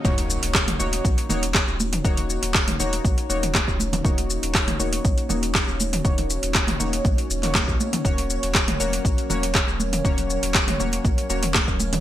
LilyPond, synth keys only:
\new Staff \with { instrumentName = "Synth keys" } { \time 4/4 \key ees \minor \tempo 4 = 120 <bes ees' ges' des''>4. <bes ees' ges' des''>4 <bes ees' ges' des''>16 r4 r16 | <bes ees' ges' des''>4. <bes ees' ges' des''>4 <bes ees' ges' des''>16 r4 r16 | <bes ees' ges' des''>4. <bes ees' ges' des''>4 <bes ees' ges' des''>16 r4 r16 | <bes ees' ges' des''>4. <bes ees' ges' des''>4 r16 <bes ees' ges' des''>4~ <bes ees' ges' des''>16 |
<bes des' ges' des''>4. <bes des' ges' des''>4 <bes des' ges' des''>16 r4 r16 | <bes des' ges' des''>4. <bes des' ges' des''>4 <bes des' ges' des''>16 r4 r16 | }